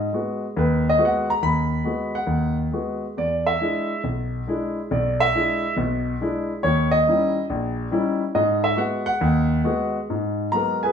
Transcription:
0.00 0.12 D#5 medium
0.13 0.44 G#3 medium
0.13 0.44 B3 soft
0.13 0.44 F#4 medium
0.57 0.94 D#2 medium
0.57 0.86 B4 medium
0.90 1.01 D#5 medium
0.98 1.29 G#3 medium
0.98 1.29 B3 medium
0.98 1.29 F#4 medium
1.05 1.30 F#5 medium
1.30 1.43 A#5 loud
1.42 1.79 D#2 medium
1.42 2.10 B5 medium
1.84 2.15 G#3 soft
1.84 2.15 B3 soft
1.84 2.16 F#4 medium
2.15 2.55 F#5 medium
2.27 2.66 D#2 medium
2.72 3.03 G#3 soft
2.72 3.04 B3 soft
2.72 3.04 F#4 medium
3.17 3.55 E2 medium
3.17 3.46 D5 medium
3.47 4.01 E5 medium
3.61 3.92 G#3 soft
3.61 3.92 D4 soft
3.61 3.92 E4 medium
4.04 4.42 B1 medium
4.47 4.78 G#3 medium
4.47 4.78 D4 soft
4.47 4.79 E4 medium
4.91 5.29 B1 medium
4.91 5.20 D5 medium
5.20 5.73 E5 loud
5.35 5.65 G#3 medium
5.35 5.65 D4 soft
5.35 5.65 E4 medium
5.76 6.14 B1 medium
5.76 6.14 B2 medium
6.21 6.51 G#3 medium
6.21 6.51 D4 medium
6.21 6.51 E4 medium
6.63 7.01 D#2 medium
6.63 6.91 C#5 medium
6.91 7.44 D#5 loud
7.07 7.37 G3 medium
7.07 7.37 C#4 soft
7.07 7.37 D#4 medium
7.07 7.38 E4 medium
7.50 7.86 A#1 medium
7.91 8.21 G3 medium
7.91 8.22 C#4 medium
7.91 8.22 D#4 medium
7.91 8.22 E4 medium
8.35 8.72 G#2 medium
8.35 8.63 D#5 medium
8.64 8.77 E5 medium
8.76 9.07 G#3 medium
8.76 9.08 B3 soft
8.76 9.08 F#4 medium
8.76 9.05 F#5 medium
9.06 9.98 F#5 loud
9.21 9.59 D#2 medium
9.64 9.96 G#3 medium
9.64 9.96 B3 medium
9.64 9.96 F#4 medium
10.10 10.48 G#2 medium
10.52 10.84 F#3 soft
10.52 10.84 G#3 soft
10.52 10.84 B3 soft
10.52 10.80 A#5 medium
10.56 10.82 A#4 medium
10.83 10.92 G#4 medium
10.83 10.92 B4 medium
10.83 10.92 G#5 medium

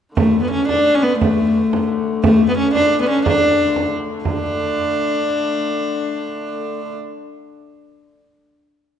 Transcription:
0.16 4.25 D3 medium
0.16 4.26 A3 medium
0.16 0.41 A3 medium
0.16 frame drum medium
0.34 frame drum soft
0.42 0.50 B3 medium
0.51 0.67 C#4 medium
0.68 0.96 D4 medium
0.68 frame drum medium
0.94 1.04 C#4 medium
1.02 1.20 B3 medium
1.20 1.85 A3 medium
1.20 frame drum medium
1.38 frame drum soft
1.73 frame drum medium
2.23 2.47 A3 medium
2.23 frame drum medium
2.41 frame drum soft
2.49 2.57 B3 medium
2.57 2.73 C#4 medium
2.75 2.98 D4 medium
2.75 frame drum medium
3.01 3.08 B3 medium
3.09 3.24 C#4 medium
3.26 3.88 D4 medium
3.26 frame drum medium
3.43 frame drum soft
3.76 frame drum medium
4.25 6.94 D3 medium
4.25 6.95 A3 medium
4.25 6.91 D4 medium
4.25 frame drum medium

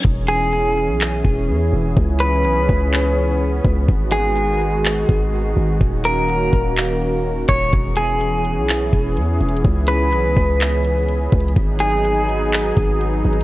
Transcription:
0.05 0.90 E1 loud
0.05 3.85 E3 medium
0.05 5.77 B3 medium
0.05 1.95 C#4 medium
0.05 3.85 G#4 loud
0.05 kick loud
0.28 1.93 G#4 medium
0.89 1.23 B1 loud
1.01 clap loud
1.25 1.50 E1 loud
1.25 kick loud
1.49 1.72 E2 medium
1.73 1.96 E1 loud
1.97 2.46 C#2 loud
1.97 3.87 C#4 medium
1.97 kick loud
2.20 3.84 B4 medium
2.45 2.58 B1 loud
2.57 2.68 C#2 loud
2.69 3.61 C#2 loud
2.69 kick medium
2.93 clap loud
3.65 3.88 C#2 loud
3.65 kick loud
3.89 5.05 G#1 loud
3.89 7.69 D#3 medium
3.89 5.79 G#3 medium
3.89 7.69 F#4 medium
3.89 kick loud
4.12 5.76 G#4 medium
4.85 clap loud
5.09 5.55 G#1 loud
5.09 kick loud
5.57 5.80 G#1 loud
5.81 6.50 D#1 loud
5.81 7.71 A#3 medium
5.81 11.53 C#4 medium
5.81 kick loud
6.05 7.45 A#4 medium
6.53 7.45 D#1 loud
6.53 kick medium
6.77 clap loud
7.49 7.72 D#1 loud
7.49 7.71 C#5 medium
7.49 kick loud
7.72 8.58 E1 loud
7.72 11.53 E3 medium
7.72 11.53 B3 medium
7.72 11.53 G#4 medium
7.72 kick loud
7.72 closed hi-hat medium
7.96 9.61 G#4 medium
7.96 closed hi-hat medium
8.20 closed hi-hat medium
8.45 closed hi-hat medium
8.57 8.91 B1 loud
8.69 clap loud
8.69 closed hi-hat medium
8.93 9.18 E1 loud
8.93 kick loud
8.93 closed hi-hat medium
9.17 9.39 E2 loud
9.17 closed hi-hat medium
9.41 9.64 E1 loud
9.41 closed hi-hat soft
9.49 closed hi-hat medium
9.57 closed hi-hat medium
9.65 10.14 C#2 loud
9.65 kick loud
9.65 closed hi-hat medium
9.88 11.52 B4 medium
9.88 closed hi-hat medium
10.13 10.26 B1 loud
10.13 closed hi-hat medium
10.25 10.36 C#2 loud
10.37 11.29 C#2 loud
10.37 kick medium
10.37 open hi-hat soft
10.61 clap loud
10.61 closed hi-hat medium
10.85 closed hi-hat medium
11.09 closed hi-hat medium
11.33 11.56 C#2 loud
11.33 kick loud
11.33 closed hi-hat soft
11.41 closed hi-hat medium
11.49 closed hi-hat medium
11.57 12.73 G#1 loud
11.57 13.44 F#3 medium
11.57 13.44 B3 medium
11.57 13.44 D#4 medium
11.57 13.44 G#4 medium
11.57 kick loud
11.57 closed hi-hat medium
11.80 13.44 G#4 medium
11.80 closed hi-hat medium
12.05 closed hi-hat medium
12.29 closed hi-hat medium
12.53 clap loud
12.53 closed hi-hat medium
12.77 13.23 G#1 loud
12.77 kick loud
12.77 closed hi-hat medium
13.01 closed hi-hat medium
13.25 13.44 G#1 loud
13.25 closed hi-hat soft
13.33 closed hi-hat medium
13.41 closed hi-hat medium

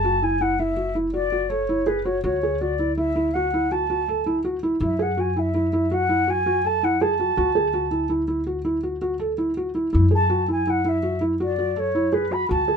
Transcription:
0.00 2.20 F#1 medium
0.00 0.25 A5 medium
0.04 0.16 F#4 medium
0.22 0.34 E4 medium
0.22 0.42 G#5 medium
0.41 0.52 E4 medium
0.41 0.61 F#5 medium
0.59 0.71 E4 medium
0.59 0.96 E5 medium
0.77 0.88 F#4 soft
0.95 1.07 E4 medium
1.13 1.25 F#4 medium
1.13 1.50 D5 medium
1.32 1.44 F#4 medium
1.49 1.62 A4 medium
1.49 1.88 C#5 medium
1.69 1.81 E4 medium
1.86 1.98 G#4 medium
1.86 2.06 B4 medium
2.05 2.17 F#4 medium
2.05 2.23 C#5 medium
2.24 4.77 D2 medium
2.24 2.36 F#4 medium
2.24 2.62 C#5 medium
2.43 2.54 G#4 medium
2.60 2.73 F#4 medium
2.60 2.96 D5 medium
2.79 2.91 E4 medium
2.96 3.09 E4 medium
2.96 3.35 E5 medium
3.16 3.27 E4 medium
3.33 3.46 F#4 medium
3.33 3.73 F#5 medium
3.54 3.65 E4 medium
3.71 3.83 F#4 medium
3.71 4.36 A5 medium
3.90 4.01 F#4 medium
4.08 4.20 A4 medium
4.26 4.38 E4 medium
4.44 4.56 F#4 medium
4.63 4.74 E4 medium
4.80 7.33 F#2 medium
4.80 4.92 E4 medium
4.80 5.03 E5 medium
4.99 5.11 G#4 medium
4.99 5.21 F#5 medium
5.17 5.29 F#4 medium
5.17 5.40 G#5 medium
5.36 5.48 E4 medium
5.36 5.94 E5 medium
5.54 5.66 E4 medium
5.73 5.84 E4 medium
5.91 6.03 F#4 medium
5.91 6.31 F#5 medium
6.09 6.21 E4 medium
6.27 6.39 F#4 medium
6.27 6.67 G#5 medium
6.46 6.58 F#4 medium
6.64 6.76 A4 medium
6.64 6.85 A5 medium
6.83 6.94 E4 medium
6.83 7.02 F#5 medium
7.01 7.13 G#4 medium
7.01 8.11 A5 medium
7.20 7.31 F#4 medium
7.37 9.90 D2 medium
7.37 7.49 F#4 medium
7.55 7.67 G#4 medium
7.74 7.85 F#4 medium
7.91 8.03 E4 medium
8.09 8.21 E4 medium
8.28 8.40 E4 medium
8.47 8.58 F#4 medium
8.65 8.76 E4 medium
8.83 8.95 F#4 medium
9.02 9.13 F#4 medium
9.19 9.31 A4 medium
9.38 9.50 E4 medium
9.57 9.68 F#4 medium
9.75 9.86 E4 medium
9.93 12.46 F#2 medium
9.93 10.04 E4 medium
10.11 10.23 G#4 medium
10.11 10.47 A5 medium
10.30 10.41 F#4 medium
10.48 10.60 E4 medium
10.48 10.71 G#5 medium
10.67 10.78 E4 medium
10.67 10.90 F#5 medium
10.85 10.96 E4 medium
10.85 11.23 E5 medium
11.03 11.14 F#4 medium
11.21 11.33 E4 medium
11.40 11.52 F#4 medium
11.40 11.80 D5 medium
11.58 11.70 F#4 medium
11.76 11.88 A4 medium
11.76 12.15 C#5 medium
11.95 12.06 E4 medium
12.13 12.24 G#4 medium
12.13 12.34 B4 medium
12.31 12.42 F#4 medium
12.31 12.49 B5 medium
12.49 12.77 D2 medium
12.49 12.61 F#4 medium
12.49 12.77 A5 medium
12.68 12.77 G#4 medium

